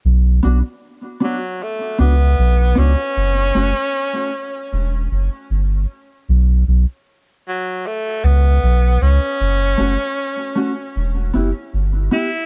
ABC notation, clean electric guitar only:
X:1
M:4/4
L:1/8
Q:1/4=77
K:Bm
V:1 name="Clean electric guitar"
z [B,DF] z [B,DF] z [B,DF] z [B,DF] | z [A,CF] z6 | z8 | z [A,CF] z [A,CF] z [B,EG] z [B,EG] |]